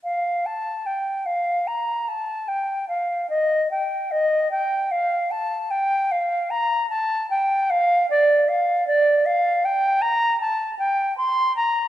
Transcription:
\new Staff \with { instrumentName = "Flute" } { \time 3/4 \key f \mixolydian \tempo 4 = 75 f''8 a''8 g''8 f''8 bes''8 a''8 | g''8 f''8 ees''8 g''8 ees''8 g''8 | f''8 a''8 g''8 f''8 bes''8 a''8 | g''8 f''8 d''8 f''8 d''8 f''8 |
\key g \dorian g''8 bes''8 a''8 g''8 c'''8 bes''8 | }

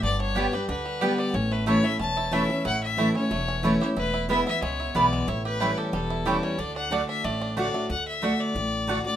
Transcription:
<<
  \new Staff \with { instrumentName = "Fiddle" } { \time 4/4 \key d \major \tempo 4 = 183 d''8 cis''4 b'8 b'4. d''8 | cis''8 b'8 cis''8 e''8 a''4 e''4 | fis''8 e''4 cis''2 cis''8 | b'4 e''8 e''8 cis''4 d''4 |
cis''8 b'4 a'8 a'4. cis''8 | d''8 fis''8 d''8 e''8 d''4 d''4 | fis''8 e''4 d''2 d''8 | }
  \new Staff \with { instrumentName = "Mandolin" } { \time 4/4 \key d \major r4 <b g' d'' g''>8 r4. <b g' d'' g''>8 r8 | r4 <a e' cis'' a''>8 r4. <a e' cis'' a''>8 r8 | r4 <a e' cis'' a''>8 r4. <a e' cis'' a''>8 r8 | r4 <b e' b' gis''>8 r4. <b e' b' gis''>8 r8 |
r4 <a e' cis'' g''>8 r4. <a e' cis'' g''>8 r8 | r4 <a fis' d'' fis''>8 r4. <a fis' d'' fis''>8 r8 | r4 <a fis' d'' fis''>8 r4. <a fis' d'' fis''>8 r8 | }
  \new Staff \with { instrumentName = "Five-string banjo" } { \time 4/4 \key d \major d8 d'8 g8 g'8 d'8 g8 g'8 g8 | cis'8 a8 e'8 a8 cis'8 e'8 a8 cis'8 | e'4 e'8 cis'8 a8 cis'8 e'8 g'8 | e'8 e'8 e'8 e'8 gis8 e'8 e'8 gis8 |
e'8 g'8 e'8 g'8 g8 e'8 g'8 g8 | d'8 d'8 d'8 d'8 a8 d'8 d'8 a8 | r1 | }
  \new Staff \with { instrumentName = "Steel-string acoustic guitar" } { \time 4/4 \key d \major << { r4 <g b d' g'>8 <d' g'>8 r4 <g b d' g'>4 | r4 <e a cis' e'>8 e'8 r4 <e a cis' e'>8 <cis' e'>8 | r4 <e a cis' e'>8 <cis' e'>8 r4 <e a cis' e'>8 <cis' e'>8 | r4 <e gis b e'>8 <b e'>8 r4 <e gis b e'>4 |
r4 <e g cis' e'>4 r4 <e g cis' e'>4 | r4 <d a d' fis'>4 r4 <d a d' fis'>8 <d' fis'>8 | r4 <d a d' fis'>4 r4 <d a d' fis'>8 <d' fis'>8 | } \\ { g,2 d2 | a,2 e,2 | a,2 e,2 | e,2 b,2 |
a,2 e,2 | d2 a,2 | d2 a,2 | } >> }
  \new Staff \with { instrumentName = "Upright bass" } { \clef bass \time 4/4 \key d \major g,,2 d,2 | a,,2 e,,2 | a,,2 e,,2 | e,,2 cis,4 b,,4 |
a,,2 e,,2 | d,2 a,,2 | d,2 a,,2 | }
>>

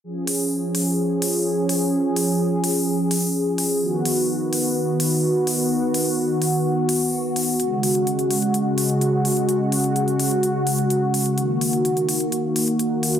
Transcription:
<<
  \new Staff \with { instrumentName = "Analog synth pad" } { \time 4/4 \key cis \mixolydian \tempo 4 = 127 << { gis'1~ | gis'1 | fis'1~ | fis'1~ |
fis'1~ | fis'1~ | fis'1 | } \\ { <eis cis'>1~ | <eis cis'>1 | <dis b>1~ | <dis b>1 |
<cis gis>1~ | <cis gis>1 | <dis ais>1 | } >> }
  \new DrumStaff \with { instrumentName = "Drums" } \drummode { \time 4/4 r8 hho8 r8 hho8 r8 hho8 r8 hho8 | r8 hho8 r8 hho8 r8 hho8 r8 hho8 | r8 hho8 r8 hho8 r8 hho8 r8 hho8 | r8 hho8 r8 hho8 r8 hho8 r8 hho8 |
hh8 hho16 hh16 hh16 hh16 hho16 hh16 hh8 hho16 hh16 hh8 hho16 hh16 | hh8 hho16 hh16 hh16 hh16 hho16 hh16 hh8 hho16 hh16 hh8 hho16 hh16 | hh8 hho16 hh16 hh16 hh16 hho16 hh16 hh8 hho16 hh16 hh8 hho16 hh16 | }
>>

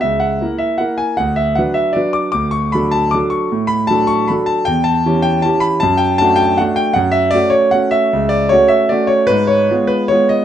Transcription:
\new Staff \with { instrumentName = "Grand piano" } { \time 3/4 \key d \major \tempo 4 = 154 << { e''8 fis''4 e''8 fis''8 gis''8 | fis''8 e''8 fis''8 e''8 d''8 d'''8 | d'''8 cis'''8 b''8 a''8 d'''8 cis'''8~ | cis'''8 b''8 a''8 cis'''8 b''8 a''8 |
g''8 a''4 g''8 a''8 b''8 | a''8 g''8 a''8 g''8 fis''8 g''8 | fis''8 e''8 d''8 cis''8 fis''8 e''8~ | e''8 d''8 cis''8 e''8 d''8 cis''8 |
ces''8 cis''4 ces''8 cis''8 dis''8 | } \\ { cis,4 <ais e' ais'>4 <ais e' ais'>4 | d,4 <fis d' b'>4 <fis d' b'>4 | d,4 <fis d' a'>4 <fis d' a'>4 | a,4 <fis d' a'>4 <fis d' a'>4 |
e,4 <e cis' g'>4 <e cis' g'>4 | fis,4 <a d' fis'>4 <a d' fis'>4 | fis,4 <a cis' fis'>4 <a cis' fis'>4 | cis,4 <a cis' fis'>4 <a cis' fis'>4 |
aes,4 <aes ces' f'>4 <aes ces' f'>4 | } >> }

